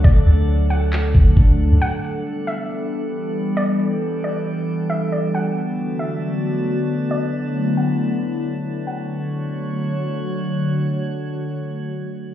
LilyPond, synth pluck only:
\new Staff \with { instrumentName = "Synth pluck" } { \time 4/4 \key d \major \tempo 4 = 136 d''4. fis''8 r2 | fis''4. e''8 r2 | d''4. d''8 r4 e''8 d''8 | fis''4. e''8 r2 |
d''4. fis''8 r2 | fis''2. r4 | r1 | }